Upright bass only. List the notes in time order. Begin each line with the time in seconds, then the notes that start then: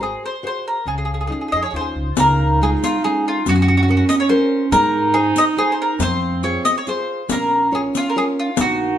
Already playing: G#1
0.86 C#2
1.52 F2
1.73 D#2
1.96 C#2
2.16 C#2
3.46 F#2
4.72 G#2
5.99 F2
7.29 A#1
8.59 A#1